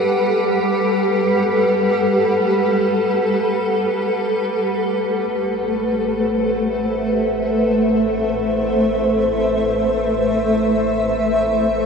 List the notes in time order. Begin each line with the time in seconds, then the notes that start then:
Already playing: G3 G4 A4 B4 F#5
4.45 A1 A3
5.46 C5
6.21 E5